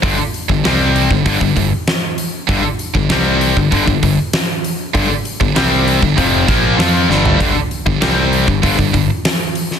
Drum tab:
HH |o-o-o-o-o-o-o-o-|o-o-o-o-o-o-o-o-|o-o-o-o-o-o-o---|o-o-o-o-o-o-o-o-|
SD |----o-------o---|----o-------o---|----o-------o-o-|----o-------o--o|
FT |----------------|----------------|---------------o|----------------|
BD |o--o---oooo-----|o--o---oooo-----|o--o---oo-o-----|o--o---oooo-----|